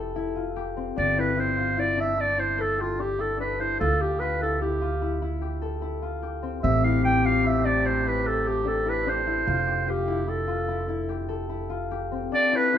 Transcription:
Already playing: upright bass F1, harp D4 E4 G4 A4
0.16 harp E4
0.36 harp F4
0.56 harp G4
0.77 harp C4
0.96 upright bass G1, harp D4, clarinet D5
1.17 harp E4, clarinet B4
1.37 harp E4, clarinet C5
1.57 harp F4
1.77 harp E4, clarinet D5
1.97 harp D4, clarinet E5
2.17 harp E4, clarinet D5
2.37 harp E4, clarinet C5
2.58 harp A4, clarinet A4
2.78 clarinet F4, harp G4
2.99 harp D4, clarinet G4
3.19 harp E4, clarinet A4
3.40 harp D4, clarinet B4
3.60 harp E4, clarinet C5
3.80 upright bass D2, harp F4, clarinet A4
4.00 harp G4, clarinet G4
4.20 harp F4, clarinet B4
4.41 harp E4, clarinet A4
4.61 harp E4, clarinet G4
4.81 harp F4
5.02 harp E4
5.22 harp E4
5.41 harp G4
5.62 harp A4
5.82 harp E4
6.02 harp F4
6.23 harp G4
6.43 harp C4
6.63 upright bass A1, woodwind section C3 A3 G4, harp C4, clarinet E5
6.84 harp E4, clarinet F5
7.04 harp E4, clarinet G5
7.25 harp F4, clarinet F5
7.44 harp E4, clarinet E5
7.64 harp D4, clarinet D5
7.84 harp E4, clarinet C5
8.05 harp E4, clarinet B4
8.25 harp A4, clarinet A4
8.46 harp G4, clarinet G4
8.65 harp D4, clarinet A4
8.86 harp E4
8.90 clarinet B4
9.07 harp D4, clarinet C5
9.27 harp E4
9.47 upright bass F1, harp F4
9.67 harp G4
9.87 harp F4, clarinet G4
10.08 harp E4
10.28 harp E4, clarinet A4
10.48 harp F4
10.68 harp E4
10.88 harp E4
11.09 harp G4
11.29 harp A4
11.49 harp E4
11.70 harp F4
11.91 harp G4
12.12 harp C4
12.32 harp D4, clarinet D5
12.53 harp E4, clarinet B4
12.73 harp E4

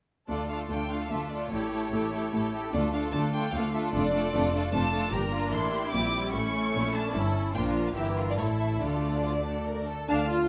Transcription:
0.28 cello section D2, double bass section D2, viola section A3 D4, violin section F4 A4 D5
0.49 viola section A3 D4, violin section F4 A4 F5
0.69 cello section D2, double bass section D2, viola section A3 D4, violin section F4 A4 G5
0.90 viola section A3 D4, violin section F4 A4 F5
1.10 cello section D2, double bass section D2, viola section A3 D4, violin section F4 A4 E5
1.30 viola section A3 D4, violin section F4 A4 D5
1.51 double bass section A1, cello section A2, viola section A3 E4, violin section G4 A4 C#5
1.71 viola section A3 E4, violin section G4 A4
1.91 double bass section A1, cello section A2, viola section A3 E4, violin section G4 A4
2.12 viola section A3 E4, violin section G4 A4
2.32 double bass section A1, cello section A2, viola section A3 E4, violin section G4 A4
2.52 viola section A3 E4, violin section G4 A4
2.73 double bass section D2, cello section D2, viola section A3 D4, violin section F4 A4 D5
2.92 viola section A3 D4, violin section F4 A4 F5
3.12 double bass section D2, cello section D2, viola section A3 D4, violin section F4 A4 A5
3.33 viola section A3 D4, violin section F4 A4 G5
3.53 double bass section D2, cello section D2, viola section A3 D4, violin section F4 A4 F5
3.73 viola section A3 D4, violin section F4 A4 E5
3.93 double bass section F1, cello section F2, viola section A3 D4, violin section F4 A4 D5
4.12 viola section A3 D4, violin section F4 A4
4.32 double bass section F1, cello section F2, viola section A3 D4, violin section F4 A4
4.53 viola section A3 D4, violin section F4 A4
4.72 double bass section F1, cello section F2, viola section A3 D4, violin section F4 A4 A5
4.92 viola section A3 D4, violin section F4 A4
5.11 double bass section G1, cello section G2, viola section A#3 D4, violin section G4 A#4 A#5
5.31 violin section F4
5.51 double bass section A1, cello section A2, violin section E4 A4 C6
5.72 violin section G4
5.92 double bass section A#1, cello section A#2, viola section G3 C4, violin section D6
6.12 viola section G3
6.32 double bass section A1, cello section A2, viola section A3 C#4, violin section E4 C#6
6.53 viola section A3
6.73 double bass section A#1, cello section A#2, violin section C#4 E4
6.93 violin section D4 A5
7.13 double bass section G1, cello section G2, viola section C#4 E4, violin section E4 A4
7.54 double bass section A#1, cello section A#2, viola section F3 D4, violin section F4 A#4 G5
7.87 violin section F5
7.95 double bass section G1, cello section G2, viola section E3 E4, violin section G4 A#4 E5
8.16 violin section F4
8.29 violin section D5
8.37 double bass section A1, cello section A2, viola section A3 E4, violin section E4 A4 C#5
8.58 violin section E5
8.73 violin section E5
8.80 double bass section D2, cello section D3, viola section A3 D4, violin section F4 A4 D5
9.22 violin section F4
9.44 violin section A4
9.67 violin section A#4
9.87 violin section A4
10.08 double bass section D2, cello section D3, viola section D4, violin section F5 A5
10.30 viola section F4

